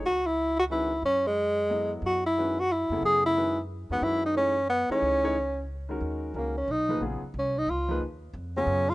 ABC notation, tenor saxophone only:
X:1
M:3/4
L:1/8
Q:"Swing" 1/4=181
K:F#dor
V:1 name="Tenor saxophone"
F E2 F E2 | C G,4 z | F E2 F E2 | G E2 z2 B, |
E D C2 B, C- | C4 z2 | [K:Ebm] z2 B, D E2 | z2 D E F2 |
z3 D2 F |]